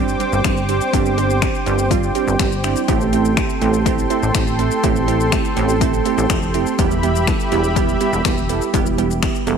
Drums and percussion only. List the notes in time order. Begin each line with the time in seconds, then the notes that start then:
0.08 shaker
0.20 closed hi-hat, shaker
0.33 shaker
0.44 finger snap, kick, closed hi-hat, shaker
0.57 shaker
0.69 closed hi-hat, shaker
0.81 shaker
0.93 kick, closed hi-hat, shaker
1.06 shaker
1.18 closed hi-hat, shaker
1.30 shaker
1.42 finger snap, kick, closed hi-hat, shaker
1.54 shaker
1.66 closed hi-hat, shaker
1.78 shaker
1.91 kick, closed hi-hat, shaker
2.03 shaker
2.15 closed hi-hat, shaker
2.28 shaker
2.40 finger snap, kick, closed hi-hat, shaker
2.52 shaker
2.64 finger snap, closed hi-hat, shaker
2.76 shaker
2.88 kick, closed hi-hat, shaker
3.01 shaker
3.13 closed hi-hat, shaker
3.25 shaker
3.37 finger snap, kick, closed hi-hat, shaker
3.50 shaker
3.62 closed hi-hat, shaker
3.74 shaker
3.86 kick, closed hi-hat, shaker
3.98 shaker
4.10 closed hi-hat, shaker
4.23 shaker
4.35 finger snap, kick, closed hi-hat, shaker
4.47 shaker
4.59 closed hi-hat, shaker
4.71 shaker
4.84 kick, closed hi-hat, shaker
4.96 shaker
5.08 closed hi-hat, shaker
5.20 shaker
5.32 finger snap, kick, closed hi-hat, shaker
5.45 shaker
5.57 closed hi-hat, shaker
5.69 shaker
5.81 kick, closed hi-hat, shaker
5.93 shaker
6.05 closed hi-hat, shaker
6.18 shaker
6.30 finger snap, kick, closed hi-hat, shaker
6.42 shaker
6.54 closed hi-hat, shaker
6.66 shaker
6.79 kick, closed hi-hat, shaker
6.91 shaker
7.03 closed hi-hat, shaker
7.15 shaker
7.27 finger snap, kick, closed hi-hat, shaker
7.40 shaker
7.52 closed hi-hat, shaker
7.64 shaker
7.76 kick, closed hi-hat, shaker
7.89 shaker
8.01 closed hi-hat, shaker
8.13 shaker
8.25 finger snap, kick, closed hi-hat, shaker
8.38 shaker
8.49 closed hi-hat, shaker
8.61 shaker
8.74 kick, closed hi-hat, shaker
8.86 shaker
8.98 closed hi-hat, shaker
9.11 shaker
9.23 finger snap, kick, closed hi-hat, shaker
9.35 shaker
9.47 closed hi-hat, shaker